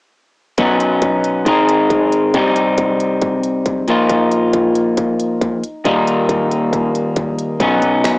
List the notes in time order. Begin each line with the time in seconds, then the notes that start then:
0.58 B2 F#3 B3 C#4 D#4, kick, closed hi-hat
0.80 closed hi-hat
1.02 kick, closed hi-hat
1.24 closed hi-hat
1.45 G#2 D#3 G#3 C4 D#4, kick, closed hi-hat
1.69 closed hi-hat
1.90 kick, closed hi-hat
2.12 closed hi-hat
2.34 C3 G3 C4 D#4 G4, kick, closed hi-hat
2.56 closed hi-hat
2.78 kick, closed hi-hat
3.00 closed hi-hat
3.21 kick, closed hi-hat
3.43 closed hi-hat
3.66 kick, closed hi-hat
3.88 A#2 F3 A#3 D#4 F4, closed hi-hat
4.09 kick, closed hi-hat
4.31 closed hi-hat
4.53 kick, closed hi-hat
4.75 closed hi-hat
4.97 kick, closed hi-hat
5.20 closed hi-hat
5.41 kick, closed hi-hat
5.63 closed hi-hat
5.84 D#2 A#2 D#3 G3 A#3 D#4, kick, closed hi-hat
6.07 closed hi-hat
6.29 kick, closed hi-hat
6.51 closed hi-hat
6.73 kick, closed hi-hat
6.95 closed hi-hat
7.16 kick, closed hi-hat
7.39 closed hi-hat
7.60 B1 B2 F#3 B3 C#4 D#4, kick, closed hi-hat
7.82 B1, closed hi-hat
8.04 F#2, finger snap, kick, closed hi-hat